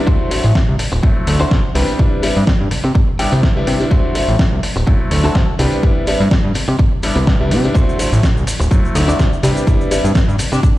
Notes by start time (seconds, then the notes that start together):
0.07 D2 F#3 A3 D4 F#4 C5, kick, maracas
0.31 F#3 A3 C4 E4, open hi-hat, maracas
0.43 A1, maracas
0.55 kick, snare, maracas
0.68 C2
0.79 muted clean electric guitar stroke, open hi-hat, maracas
0.92 D1, muted clean electric guitar stroke, maracas
1.03 F#2 F#3 A3 C4 E4, muted clean electric guitar stroke, kick, maracas
1.16 muted clean electric guitar stroke
1.27 D2, open hi-hat, maracas
1.40 F#3 A3 C4 D4 E4 F#4 C5, maracas
1.51 C2, kick, snare, maracas
1.75 C2 G3 B3 C4 D4 E4 G4 B4, open hi-hat, maracas
1.88 maracas
1.99 C2 G3 B3 D4 E4, kick, maracas
2.22 G3 B3 D4 E4, open hi-hat, maracas
2.36 G2, maracas
2.47 kick, snare, maracas
2.60 G2
2.71 C3, muted clean electric guitar stroke, open hi-hat, maracas
2.84 C3, muted clean electric guitar stroke, maracas
2.95 muted clean electric guitar stroke, kick, maracas
3.08 muted clean electric guitar stroke
3.19 G3 B3 D4 E4 G5, open hi-hat, maracas
3.32 C2 C4 E4 C5, maracas
3.43 E5, kick, snare, maracas
3.56 G3 B3 D4 E4
3.67 C3, open hi-hat, maracas
3.80 G3 B3 D4 E4, maracas
3.91 D2 F#3 A3 C4 D4 F#4 C5, kick, maracas
4.15 F#3 A3 C4 E4, open hi-hat, maracas
4.28 A1, maracas
4.39 kick, snare, maracas
4.52 C2
4.63 muted clean electric guitar stroke, open hi-hat, maracas
4.76 D1, muted clean electric guitar stroke, maracas
4.87 F#2 F#3 A3 C4 E4, muted clean electric guitar stroke, kick, maracas
5.00 muted clean electric guitar stroke
5.11 D2, open hi-hat, maracas
5.24 F#3 A3 C4 D4 E4 F#4 A4, maracas
5.35 C2, kick, snare, maracas
5.59 C2 G3 B3 C4 D4 E4 G4 B4, open hi-hat, maracas
5.72 maracas
5.83 C2 G3 B3 E4, kick, maracas
6.07 G3 B3 D4 E4, open hi-hat, maracas
6.20 G2, maracas
6.31 kick, snare, maracas
6.44 G2
6.55 C3, muted clean electric guitar stroke, open hi-hat, maracas
6.68 C3, muted clean electric guitar stroke, maracas
6.79 muted clean electric guitar stroke, kick, maracas
6.92 muted clean electric guitar stroke
7.03 G3 B3 D4 E4, open hi-hat, maracas
7.16 C2 C4 E4 B4, maracas
7.27 G2, kick, snare, maracas
7.40 C2 G3 B3 D4 E4
7.51 C3, open hi-hat, maracas
7.64 G3 B3 D4 E4, maracas
7.74 D2 F#3 A3 C4 D4 E4 F#4 C5, kick, cabasa, maracas
7.89 cabasa
7.99 F#3 A3 C4 E4, open hi-hat, cabasa, maracas
8.12 A1, cabasa, maracas
8.23 kick, snare, cabasa, maracas
8.36 C2, cabasa
8.47 muted clean electric guitar stroke, open hi-hat, cabasa, maracas
8.60 D1, muted clean electric guitar stroke, cabasa, maracas
8.71 F#2 F#3 A3 C4 E4, muted clean electric guitar stroke, kick, cabasa, maracas
8.84 muted clean electric guitar stroke, cabasa
8.95 D2 E4, open hi-hat, cabasa, maracas
9.08 F#3 A3 C4 D4 E4 F#4 D5, cabasa, maracas
9.19 C2, kick, snare, cabasa, maracas
9.33 cabasa
9.43 C2 G3 B3 C4 D4 E4 G4 B4, open hi-hat, cabasa, maracas
9.57 cabasa, maracas
9.67 C2 D4 E4, kick, cabasa, maracas
9.81 cabasa
9.91 G3 B3 D4 E4, open hi-hat, cabasa, maracas
10.04 G2, cabasa, maracas
10.15 kick, snare, cabasa, maracas
10.28 G2, cabasa
10.39 C3, muted clean electric guitar stroke, open hi-hat, cabasa, maracas
10.52 C3 D4, muted clean electric guitar stroke, cabasa, maracas
10.63 D4, muted clean electric guitar stroke, kick, cabasa, maracas